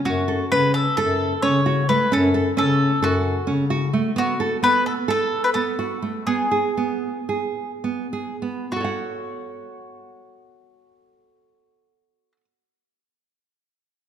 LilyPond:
<<
  \new Staff \with { instrumentName = "Mandolin" } { \time 9/8 \key fis \minor \tempo 4. = 81 fis'4 b'8 a'8 a'4 cis''4 b'8 | a'4 a'4 fis'4 r4. | fis'4 b'8 a'8 a'8. b'16 a'4. | gis'2.~ gis'8 r4 |
fis'1~ fis'8~ | fis'1~ fis'8 | }
  \new Staff \with { instrumentName = "Nylon-string guitar" } { \time 9/8 \key fis \minor cis'8 a'8 cis'4 a'4 cis'8 fis'8 a8 | cis'8 a'8 cis'4 a'4 cis'8 fis'8 a8 | b8 a'8 b4 a'4 b8 fis'8 a8 | b8 gis'8 b4 gis'4 b8 gis'8 b8 |
<fis' a' cis'' fis''>1~ <fis' a' cis'' fis''>8~ | <fis' a' cis'' fis''>1~ <fis' a' cis'' fis''>8 | }
  \new Staff \with { instrumentName = "Bass clarinet" } { \clef bass \time 9/8 \key fis \minor fis,4 cis4 fis,4 cis4. | fis,4 cis4 fis,4 cis4. | r1 r8 | r1 r8 |
r1 r8 | r1 r8 | }
>>